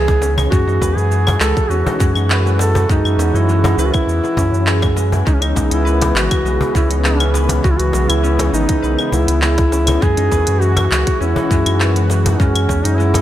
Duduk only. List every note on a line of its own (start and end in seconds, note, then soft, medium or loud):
0.00 0.33 G#4 loud
0.49 0.98 F#4 loud
0.96 1.39 G#4 loud
1.40 1.72 A4 loud
1.70 2.16 F#4 loud
2.60 2.88 A4 loud
2.90 3.37 D#4 loud
3.36 3.77 E4 loud
3.78 3.87 E4 medium
3.85 3.94 F#4 medium
3.93 4.97 E4 loud
5.27 5.35 D#4 medium
5.33 5.43 C#4 medium
5.42 5.72 D#4 medium
5.73 6.13 E4 loud
6.16 6.72 F#4 medium
6.75 6.89 E4 medium
7.04 7.47 C#4 medium
7.63 7.72 F#4 loud
7.70 7.80 E4 medium
7.78 8.10 F#4 loud
8.09 8.53 E4 loud
8.53 9.09 D#4 loud
9.13 9.40 E4 medium
9.43 10.04 E4 loud
10.02 10.63 G#4 loud
10.61 11.20 F#4 loud
11.21 12.06 E4 loud
12.32 12.40 D#4 medium
12.39 12.86 C#4 loud
12.85 12.99 D#4 loud
12.97 13.21 E4 loud